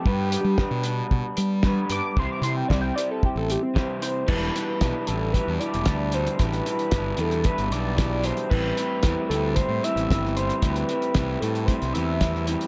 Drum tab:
CC |----------------|----------------|x---------------|----------------|
HH |--x---x---x---x-|--x---x---x---x-|--x-x-x-x-xxx-xx|xxxxx-xxxxx-x-xx|
SD |----o-------o---|----o-------o---|----o-------o---|----o-------o---|
BD |o---o---o---o---|o---o---o---o---|o---o---o---o---|o---o---o---o---|

CC |x---------------|----------------|
HH |--x-x-x-x-xxx-xx|xxxxx-xxxxx-x-xx|
SD |----o-------oo--|----o-------oo--|
BD |o---o---o---o---|o---o---o---o---|